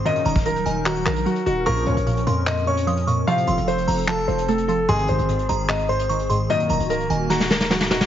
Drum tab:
HH |xxxxxxx-xxxxxxx-|xxxxxxx-xxxxxxx-|xxxxxxo-xxxxxxx-|xxxxxxx-xxxxxxx-|
CP |--------x-x-----|--------x-------|--------x-------|--------x-------|
SD |----------------|----------------|----------------|----------------|
BD |---o------------|----------------|----------------|----------------|

HH |xxxxxxx---------|
CP |----------------|
SD |--------oooooooo|
BD |----------------|